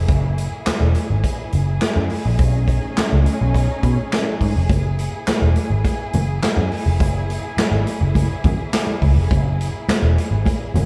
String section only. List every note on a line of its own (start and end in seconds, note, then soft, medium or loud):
0.00 2.36 A#3 medium
0.00 2.36 E4 medium
0.00 10.86 G#4 medium
2.40 4.67 A3 medium
2.40 4.68 C#4 medium
2.40 4.68 D#4 medium
4.69 10.86 A#3 medium
4.69 10.86 E4 medium